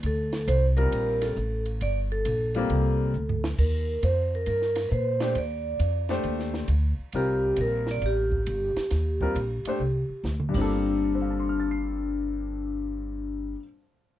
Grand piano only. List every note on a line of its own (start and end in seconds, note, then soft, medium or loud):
0.77 1.33 G3 medium
0.77 1.33 C4 medium
0.77 1.34 F4 medium
0.77 1.34 A#4 medium
2.55 3.11 G3 medium
2.55 3.12 A#3 medium
2.55 3.12 C4 medium
2.55 3.11 F4 medium
5.21 5.34 A3 medium
5.21 5.34 D4 medium
5.21 5.35 G4 medium
5.21 5.35 C5 medium
6.10 6.66 A3 medium
6.10 6.66 D4 medium
6.10 6.66 G4 medium
6.10 6.67 C5 medium
7.14 8.38 G3 medium
7.14 8.38 C4 medium
7.14 8.39 F4 medium
7.14 8.39 A#4 medium
9.21 9.35 G3 medium
9.21 9.35 C4 medium
9.21 9.35 F4 medium
9.21 9.35 A#4 medium
9.67 9.80 A3 medium
9.67 9.80 D4 medium
9.67 9.80 G4 medium
9.67 9.80 C5 medium
10.49 13.52 G2 medium
10.49 13.55 G3 medium
10.54 13.58 A#3 medium
10.54 13.60 C4 medium
10.58 13.62 F4 medium
10.58 13.65 A4 medium
11.15 14.14 C5 soft
11.22 14.19 F5 soft
11.30 14.19 A5 soft
11.40 14.19 C6 soft
11.49 14.19 F6 soft
11.60 14.19 A6 soft
11.71 14.19 C7 soft